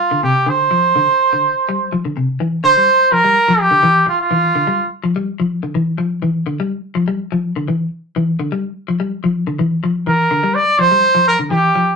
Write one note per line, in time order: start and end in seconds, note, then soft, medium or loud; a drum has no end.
0.00 0.21 F4 medium
0.11 0.21 D3 medium
0.23 0.43 C3 medium
0.23 0.50 G4 medium
0.46 0.67 D3 medium
0.46 1.93 C5 medium
0.71 0.91 F3 medium
0.96 1.06 D3 medium
1.33 1.52 D3 medium
1.69 1.88 G3 medium
1.92 2.02 F3 medium
2.05 2.14 D3 medium
2.17 2.36 C3 medium
2.40 2.60 E3 medium
2.63 2.74 D3 medium
2.63 3.13 C5 loud
2.77 2.97 G3 medium
3.12 3.22 F3 medium
3.12 3.61 A#4 loud
3.24 3.44 G3 medium
3.48 3.68 F3 medium
3.60 4.08 G4 loud
3.71 3.81 D3 medium
3.83 4.03 E3 medium
4.07 4.20 F4 medium
4.07 muted clean electric guitar stroke medium
4.21 4.88 F4 medium
4.31 4.51 E3 medium
4.55 4.66 D3 medium
4.67 4.87 G3 medium
5.04 5.14 F3 medium
5.16 5.36 G3 medium
5.40 5.60 F3 medium
5.63 5.73 D3 medium
5.75 5.95 E3 medium
5.98 6.19 F3 medium
6.22 6.43 E3 medium
6.46 6.57 D3 medium
6.60 6.80 G3 medium
6.95 7.05 F3 medium
7.08 7.28 G3 medium
7.32 7.52 F3 medium
7.56 7.66 D3 medium
7.68 7.88 E3 medium
8.16 8.36 E3 medium
8.39 8.50 D3 medium
8.52 8.72 G3 medium
8.88 8.98 F3 medium
9.00 9.20 G3 medium
9.24 9.44 F3 medium
9.47 9.57 D3 medium
9.59 9.79 E3 medium
9.84 10.03 F3 medium
10.07 10.27 E3 medium
10.07 10.56 A#4 loud
10.31 10.41 D3 medium
10.43 10.63 G3 medium
10.55 10.81 D5 loud
10.79 10.89 F3 medium
10.79 11.27 C5 loud
10.91 11.11 G3 medium
11.15 11.35 F3 medium
11.28 11.38 A#4 medium
11.39 11.49 D3 medium
11.51 11.71 E3 medium
11.51 11.96 G4 loud
11.75 11.95 F3 medium